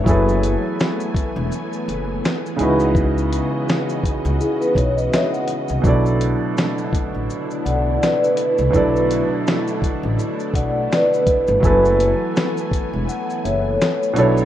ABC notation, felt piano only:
X:1
M:4/4
L:1/8
Q:"Swing 16ths" 1/4=83
K:Bdor
V:1 name="Felt piano"
[F,EGAB]6- [F,EGAB] [C,G,^DEFB]- | [C,G,^DEFB]6- [C,G,DEFB] z | [B,,F,DEAd]8 | [B,,F,DEAd]8 |
[F,EABg]6- [F,EABg] [B,,F,DEAc] |]